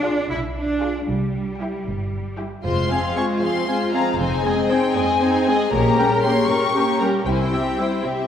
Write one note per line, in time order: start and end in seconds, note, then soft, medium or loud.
0.00 0.15 B1 medium
0.00 0.30 D4 medium
0.04 0.24 F4 medium
0.04 0.24 G#4 medium
0.04 0.24 F5 medium
0.31 0.93 B1 medium
0.31 0.39 E4 medium
0.57 1.08 D4 medium
0.82 1.02 F4 soft
0.82 1.02 G#4 soft
0.82 1.02 F5 soft
1.09 1.71 C2 medium
1.09 2.37 G3 medium
1.61 1.80 E4 soft
1.61 1.80 G4 soft
1.61 1.80 G5 soft
1.87 2.50 G1 soft
2.39 2.58 E4 soft
2.39 2.59 G4 soft
2.39 2.59 G5 soft
2.65 3.13 F1 medium
2.65 3.31 F2 soft
2.65 4.15 G#3 soft
2.65 2.89 G#3 soft
2.65 4.15 F4 soft
2.65 2.89 F4 soft
2.65 2.89 C5 soft
2.65 3.13 C6 medium
2.91 3.17 F3 soft
2.91 3.17 C4 soft
2.91 3.00 C4 soft
2.91 3.16 G#4 soft
2.91 3.16 F5 soft
2.91 3.00 G#5 soft
3.16 3.42 G#3 soft
3.16 3.26 C4 soft
3.16 3.42 F4 soft
3.16 3.42 C5 soft
3.16 3.26 G#5 soft
3.16 3.25 C#6 medium
3.42 4.08 F2 soft
3.42 3.68 F3 soft
3.42 3.68 C4 soft
3.42 3.68 G#4 soft
3.42 3.68 F5 soft
3.42 3.93 C6 medium
3.67 3.92 G#3 soft
3.67 3.78 C4 soft
3.67 3.92 F4 soft
3.67 3.92 C5 soft
3.67 3.77 G#5 soft
3.93 4.20 F3 soft
3.93 4.03 C4 soft
3.93 4.19 C4 soft
3.93 4.19 G#4 soft
3.93 4.19 F5 soft
3.93 4.03 G#5 soft
3.93 4.12 A#5 medium
4.13 4.20 A#5 soft
4.19 4.67 F1 medium
4.19 4.85 F2 medium
4.19 5.70 C4 medium
4.19 4.44 C4 soft
4.19 4.44 D#4 soft
4.19 6.49 G#4 medium
4.19 4.43 C5 soft
4.19 4.71 G#5 medium
4.45 4.71 G#3 soft
4.45 4.55 C4 soft
4.45 4.70 C4 soft
4.45 4.71 G#4 soft
4.45 4.71 D#5 soft
4.45 4.55 G#5 soft
4.69 4.96 C4 soft
4.69 4.80 C4 soft
4.69 4.96 D#4 soft
4.69 4.95 C5 soft
4.69 4.95 G5 medium
4.69 4.80 G#5 soft
4.96 5.61 F2 medium
4.96 5.22 G#3 soft
4.96 5.21 C4 medium
4.96 5.21 G#4 soft
4.96 5.21 D#5 medium
4.96 5.73 G#5 medium
5.21 5.31 C4 soft
5.21 5.46 C4 soft
5.21 5.46 D#4 soft
5.21 5.45 C5 soft
5.21 5.31 G#5 soft
5.47 5.73 G#3 soft
5.47 5.73 C4 soft
5.47 5.56 C4 soft
5.47 5.72 G#4 soft
5.47 5.72 D#5 soft
5.47 5.57 G#5 soft
5.73 6.20 A#1 medium
5.73 6.38 A#2 medium
5.73 5.96 A#3 soft
5.73 7.23 C#4 medium
5.73 5.96 G4 soft
5.73 5.97 A#4 soft
5.73 5.97 C#5 medium
5.73 6.24 A#5 medium
5.98 6.24 G3 soft
5.98 6.08 C#4 soft
5.98 6.24 G4 soft
5.98 6.24 A#4 soft
5.98 6.23 A#4 soft
5.98 6.08 G5 soft
6.24 6.49 A#3 soft
6.24 6.33 C#4 soft
6.24 6.49 G4 soft
6.24 6.48 A#4 soft
6.24 6.49 C#5 soft
6.24 6.33 G5 soft
6.24 6.49 C6 medium
6.49 7.15 A#2 medium
6.49 6.75 G3 soft
6.49 7.26 G4 medium
6.49 6.75 G4 soft
6.49 6.75 A#4 soft
6.49 6.74 A#4 soft
6.49 7.00 C#6 medium
6.74 6.98 A#3 soft
6.74 6.84 C#4 soft
6.74 6.98 G4 soft
6.74 6.99 A#4 soft
6.74 6.99 C#5 soft
6.74 6.85 G5 soft
7.01 7.26 G3 soft
7.01 7.10 C#4 soft
7.01 7.27 G4 soft
7.01 7.27 A#4 soft
7.01 7.10 G5 soft
7.01 7.09 A#5 medium
7.26 7.75 C2 soft
7.26 7.92 C3 soft
7.26 7.50 G3 soft
7.26 7.97 C4 soft
7.26 7.97 E4 soft
7.26 7.50 E4 soft
7.26 7.51 E4 soft
7.26 7.51 C5 soft
7.26 7.29 G5 soft
7.33 7.40 G#5 soft
7.40 8.04 G5 soft
7.52 7.78 C4 soft
7.52 7.62 C4 soft
7.52 7.78 G4 soft
7.52 7.79 G4 soft
7.52 7.62 E5 soft
7.52 7.79 E5 soft
7.78 8.04 G3 soft
7.78 7.88 C4 soft
7.78 8.04 E4 soft
7.78 8.05 E4 soft
7.78 8.05 C5 soft
7.78 7.87 E5 soft
8.04 8.27 C3 soft
8.04 8.16 C4 soft
8.04 8.27 C4 soft
8.04 8.27 G4 soft
8.04 8.27 E5 soft